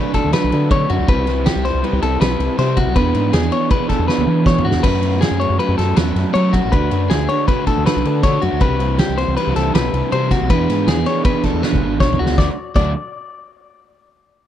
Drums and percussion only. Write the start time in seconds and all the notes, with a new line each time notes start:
0.14 kick, ride
0.33 snare, ride
0.52 ride
0.71 kick, ride
0.90 ride
1.08 kick, ride
1.27 snare, ride
1.46 snare, ride
1.65 snare, ride
1.84 ride
2.02 ride
2.21 snare, ride
2.40 ride
2.59 snare, ride
2.77 kick, ride
2.96 kick, ride
3.15 ride
3.33 snare, ride
3.52 ride
3.70 kick, ride
3.89 kick, snare, ride
4.09 snare
4.21 high tom
4.46 kick, snare
4.58 floor tom
4.71 snare
4.84 kick, crash, ride
5.03 ride
5.22 snare, ride
5.41 ride
5.60 ride
5.79 snare, ride
5.97 snare, ride
6.16 snare, ride
6.35 ride
6.54 kick, ride
6.73 kick, ride
6.91 ride
7.10 snare, ride
7.29 ride
7.48 kick, ride
7.67 kick, ride
7.86 snare, ride
8.05 ride
8.23 kick, snare, ride
8.42 ride
8.60 kick, ride
8.80 ride
8.98 snare, ride
9.18 snare, ride
9.37 ride
9.56 snare, ride
9.75 snare, ride
9.94 ride
10.12 ride
10.31 kick, snare, ride
10.50 kick, ride
10.70 snare, ride
10.88 snare, ride
11.06 snare, ride
11.25 kick, ride
11.44 kick, snare, ride
11.63 snare
11.75 kick
12.00 kick, snare
12.13 floor tom
12.26 snare
12.38 kick, snare
12.76 kick, crash